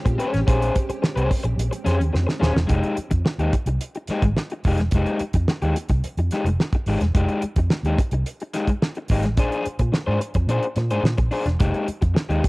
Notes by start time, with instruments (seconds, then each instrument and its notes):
Already playing: string machine G#3 C4 C#4 G4
0.05 fingered electric bass A#2, muted overdriven electric guitar stroke, kick, closed hi-hat
0.18 overdriven electric guitar C#4 G#4 C5, closed hi-hat
0.34 fingered electric bass A1, muted overdriven electric guitar stroke, snare, closed hi-hat
0.47 fingered electric bass A#1, overdriven electric guitar C#4 G#4 C5, kick, closed hi-hat
0.62 closed hi-hat
0.75 kick, closed hi-hat
0.89 muted fingered electric bass stroke, muted overdriven electric guitar stroke, closed hi-hat
1.02 muted overdriven electric guitar stroke, snare
1.16 fingered electric bass C2, overdriven electric guitar C#4 G#4 C5, closed hi-hat
1.30 muted overdriven electric guitar stroke, kick, open hi-hat
1.44 fingered electric bass A#1, muted overdriven electric guitar stroke, closed hi-hat
1.58 fingered electric bass A#1, closed hi-hat
1.71 muted overdriven electric guitar stroke, closed hi-hat
1.85 fingered electric bass F2, overdriven electric guitar C#4 G#4 C5, snare, closed hi-hat
1.98 fingered electric bass D#2, muted overdriven electric guitar stroke, closed hi-hat
2.13 fingered electric bass F2, muted overdriven electric guitar stroke, snare
2.27 muted overdriven electric guitar stroke, snare
2.40 fingered electric bass D#1, overdriven electric guitar C#4 G#4 C5, snare
2.54 fingered electric bass E1, muted overdriven electric guitar stroke, snare
2.67 fingered electric bass F1, overdriven electric guitar G#3 D#4 G4, kick, closed hi-hat
2.83 closed hi-hat
2.97 muted fingered electric bass stroke, closed hi-hat
3.11 fingered electric bass F2, muted overdriven electric guitar stroke, kick, closed hi-hat
3.25 muted overdriven electric guitar stroke, snare
3.38 fingered electric bass D#2, overdriven electric guitar G#3 D#4 G4, closed hi-hat
3.53 muted overdriven electric guitar stroke, kick, closed hi-hat
3.66 fingered electric bass C2, muted overdriven electric guitar stroke, closed hi-hat
3.81 closed hi-hat
3.95 muted overdriven electric guitar stroke, closed hi-hat
4.07 overdriven electric guitar G#3 D#4, muted fingered electric bass stroke, snare, closed hi-hat
4.12 overdriven electric guitar G4
4.22 fingered electric bass G#1, muted overdriven electric guitar stroke, kick, closed hi-hat
4.36 muted overdriven electric guitar stroke, snare
4.50 muted overdriven electric guitar stroke, closed hi-hat
4.64 fingered electric bass F1, overdriven electric guitar G#3 D#4 G4, kick, open hi-hat
4.78 fingered electric bass E1, muted overdriven electric guitar stroke, snare, closed hi-hat
4.91 fingered electric bass F1, overdriven electric guitar G#3, kick, closed hi-hat
4.96 overdriven electric guitar D#4 G4
5.06 closed hi-hat
5.19 muted fingered electric bass stroke, closed hi-hat
5.33 fingered electric bass F2, muted overdriven electric guitar stroke, kick, closed hi-hat
5.48 muted overdriven electric guitar stroke, snare
5.62 fingered electric bass D#2, overdriven electric guitar G#3 D#4 G4, closed hi-hat
5.76 muted overdriven electric guitar stroke, closed hi-hat
5.89 fingered electric bass C2, muted overdriven electric guitar stroke, kick, closed hi-hat
6.04 closed hi-hat
6.17 fingered electric bass F2, muted overdriven electric guitar stroke, closed hi-hat
6.31 overdriven electric guitar G#3 D#4 G4, snare, closed hi-hat
6.45 fingered electric bass F1, muted overdriven electric guitar stroke, closed hi-hat
6.60 muted overdriven electric guitar stroke, snare
6.73 muted overdriven electric guitar stroke, kick, closed hi-hat
6.86 fingered electric bass G#1, overdriven electric guitar G#3 D#4 G4, open hi-hat
7.01 fingered electric bass E1, muted overdriven electric guitar stroke, snare, closed hi-hat
7.15 fingered electric bass F1, overdriven electric guitar G#3 D#4 G4, kick, closed hi-hat
7.29 closed hi-hat
7.42 muted fingered electric bass stroke, closed hi-hat
7.56 fingered electric bass F2, muted overdriven electric guitar stroke, kick, closed hi-hat
7.70 muted overdriven electric guitar stroke, snare
7.83 fingered electric bass D#2, overdriven electric guitar G#3 D#4 G4, closed hi-hat
7.98 muted overdriven electric guitar stroke, kick, closed hi-hat
8.11 fingered electric bass C2, muted overdriven electric guitar stroke, closed hi-hat
8.26 closed hi-hat
8.40 muted overdriven electric guitar stroke, closed hi-hat
8.54 overdriven electric guitar G#3 D#4 G4, snare, closed hi-hat
8.67 muted overdriven electric guitar stroke, kick, closed hi-hat
8.82 muted overdriven electric guitar stroke, snare
8.95 muted overdriven electric guitar stroke, closed hi-hat
9.08 fingered electric bass G#1, overdriven electric guitar G#3 D#4, kick, open hi-hat
9.13 overdriven electric guitar G4
9.23 fingered electric bass A1, muted overdriven electric guitar stroke, snare, closed hi-hat
9.37 fingered electric bass A#1, overdriven electric guitar D4 G#4 C5, kick, closed hi-hat
9.52 closed hi-hat
9.65 muted fingered electric bass stroke, closed hi-hat
9.79 fingered electric bass A#2, muted overdriven electric guitar stroke, kick, closed hi-hat
9.92 muted overdriven electric guitar stroke, snare
10.07 fingered electric bass G#2, overdriven electric guitar D4 G#4 C5
10.20 muted overdriven electric guitar stroke, closed hi-hat
10.34 fingered electric bass F2, muted overdriven electric guitar stroke, kick, closed hi-hat
10.47 fingered electric bass A#2, overdriven electric guitar D4 G#4 C5, closed hi-hat
10.63 closed hi-hat
10.76 fingered electric bass A#2, muted overdriven electric guitar stroke, snare, closed hi-hat
10.90 fingered electric bass G#2, overdriven electric guitar D4 G#4 C5, closed hi-hat
11.03 fingered electric bass A#2, muted overdriven electric guitar stroke, snare
11.18 fingered electric bass A#1, muted overdriven electric guitar stroke, kick, closed hi-hat
11.31 overdriven electric guitar D4 G#4 C5, open hi-hat
11.45 fingered electric bass E1, muted overdriven electric guitar stroke, snare, closed hi-hat
11.60 fingered electric bass F1, overdriven electric guitar G#3 D#4 G4, kick, closed hi-hat
11.74 closed hi-hat
11.88 muted fingered electric bass stroke, closed hi-hat
12.02 fingered electric bass F2, muted overdriven electric guitar stroke, kick, closed hi-hat
12.14 muted overdriven electric guitar stroke, snare
12.29 fingered electric bass D#2, overdriven electric guitar G#3 D#4 G4, closed hi-hat
12.44 muted overdriven electric guitar stroke, kick, closed hi-hat